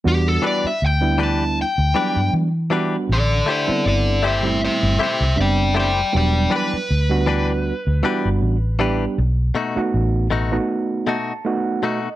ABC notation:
X:1
M:4/4
L:1/16
Q:"Swing 16ths" 1/4=79
K:Em
V:1 name="Overdriven electric guitar"
G A d e g2 a2 g4 z4 | [Ad]2 [Ad]2 [Ad]2 [ce]2 [ce]2 [ce]2 [dg]2 [dg]2 | [dg]2 B12 z2 | z16 |]
V:2 name="Clean electric guitar"
z2 [E,DGB]2 z2 [E,DGB]2 z2 [E,DGB]2 z2 [E,DGB]2 | z2 [A,EGc]2 z2 [A,EGc]2 z2 [A,EGc]2 z2 [A,EGc]2 | z2 [E,DGB]2 z2 [E,DGB]2 z2 [E,DGB]2 z2 [E,DGB]2 | z2 [B,,A,^DF]2 z2 [B,,A,DF]2 z2 [B,,A,DF]2 z2 [B,,A,DF]2 |]
V:3 name="Reed electric piano"
z16 | z16 | z16 | z8 z2 a2 f2 ^d2 |]
V:4 name="Reed electric piano"
[G,B,DF]3 z2 [G,B,DE]3 z2 [F,G,B,D]3 z [G,B,DF]2 | z3 [G,B,CE]3 z [G,A,CE]3 z2 [G,B,CD]3 z | [F,G,B,D]3 z2 [G,B,DF]3 z2 [G,B,DF]3 z [G,B,DG]2 | z3 [A,B,^DF]3 z [A,B,DF]3 z2 [A,B,DF]3 z |]
V:5 name="Fingered electric bass" clef=bass
E,,2 z2 D,,4- D,, D,, z G,, E,4 | A,,,2 z2 G,,,4- G,,, G,,, z C,, F,,,4 | E,,,2 z2 D,,4- D,, D,, z G,,, A,,,4 | B,,,2 z2 A,,,4 z8 |]